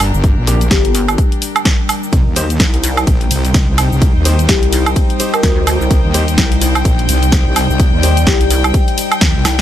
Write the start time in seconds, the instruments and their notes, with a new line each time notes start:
Already playing: wobble bass G1, ambient pad G3 D4 A#4, string section D4 A#4 G5
0.00 open hi-hat, high woodblock, shaker
0.14 wobble bass G1, shaker
0.24 kick, closed hi-hat, shaker
0.38 wobble bass A#1
0.47 grand piano A#3 D4 G4, open hi-hat, shaker
0.61 closed hi-hat, shaker
0.71 wobble bass G1, marimba G4, kick, snare, shaker
0.85 closed hi-hat
0.95 open hi-hat, shaker
1.08 closed hi-hat, high woodblock, shaker
1.18 kick, closed hi-hat, shaker
1.32 closed hi-hat
1.42 open hi-hat, shaker
1.56 closed hi-hat, high woodblock, shaker
1.65 kick, snare, closed hi-hat, shaker
1.89 open hi-hat, high woodblock, shaker
2.03 shaker
2.13 wobble bass C2, ambient pad G3 D#4 C5, string section D#4, kick, closed hi-hat, ride, shaker
2.27 wobble bass D#2
2.36 grand piano D#4 G4 C5, string section C5, open hi-hat, ride, shaker
2.50 closed hi-hat, shaker
2.60 wobble bass C2, kick, snare, ride, shaker
2.72 string section G5, closed hi-hat
2.84 open hi-hat, ride, shaker
2.97 closed hi-hat, high woodblock, shaker
3.07 wobble bass A#1, kick, closed hi-hat, ride, shaker
3.21 closed hi-hat
3.31 wobble bass C2, open hi-hat, ride, shaker
3.45 closed hi-hat, shaker
3.54 kick, snare, closed hi-hat, ride, shaker
3.68 wobble bass C2
3.78 open hi-hat, ride, high woodblock, shaker
3.92 wobble bass C2, shaker
4.02 kick, closed hi-hat, ride, shaker
4.16 wobble bass D#2
4.25 grand piano D#4 G4 C5, open hi-hat, ride, shaker
4.39 closed hi-hat, shaker
4.49 wobble bass C2, marimba G4, kick, snare, ride, shaker
4.63 closed hi-hat
4.73 open hi-hat, ride, shaker
4.86 closed hi-hat, high woodblock, shaker
4.96 kick, closed hi-hat, ride, shaker
5.10 closed hi-hat
5.20 grand piano D#4 G4 C5, open hi-hat, ride, shaker
5.34 marimba A#4, closed hi-hat, high woodblock, shaker
5.43 wobble bass D2, kick, snare, closed hi-hat, ride, shaker
5.67 open hi-hat, ride, high woodblock, shaker
5.81 wobble bass C2, shaker
5.91 wobble bass C2, ambient pad D5, kick, closed hi-hat, ride, shaker
6.04 wobble bass D#2
6.14 grand piano D#4 G4 C5, open hi-hat, ride, shaker
6.28 closed hi-hat, shaker
6.38 wobble bass C2, kick, snare, ride, shaker
6.52 closed hi-hat
6.62 open hi-hat, ride, shaker
6.75 closed hi-hat, high woodblock, shaker
6.85 wobble bass A#1, kick, closed hi-hat, ride, shaker
6.99 closed hi-hat
7.09 wobble bass C2, open hi-hat, ride, shaker
7.23 closed hi-hat, shaker
7.32 kick, snare, closed hi-hat, ride, shaker
7.46 wobble bass C2
7.56 open hi-hat, ride, high woodblock, shaker
7.70 wobble bass C2, shaker
7.80 kick, closed hi-hat, ride, shaker
7.93 wobble bass D#2
8.03 grand piano D#4 G4 C5, open hi-hat, ride, shaker
8.17 closed hi-hat, shaker
8.27 wobble bass C2, marimba G4, kick, snare, ride, shaker
8.41 closed hi-hat
8.51 open hi-hat, ride, shaker
8.64 closed hi-hat, high woodblock, shaker
8.74 kick, closed hi-hat, ride, shaker
8.88 closed hi-hat
8.98 open hi-hat, ride, shaker
9.12 closed hi-hat, high woodblock, shaker
9.21 wobble bass D#2, kick, snare, closed hi-hat, ride, shaker
9.35 wobble bass C2
9.45 wobble bass C2, snare, open hi-hat, ride, high woodblock, shaker